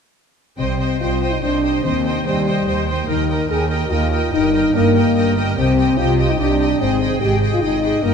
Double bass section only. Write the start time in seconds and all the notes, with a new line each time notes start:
0.59 C2
1.01 C2
1.43 C2
1.84 D#2
2.26 D#2
2.67 D#2
3.09 D#2
3.50 D#2
3.91 D#2
4.33 G1
4.75 G1
5.16 G1
5.58 C2
5.98 C2
6.40 C2
6.81 G#1
7.22 G#1
7.63 G#1
8.04 G1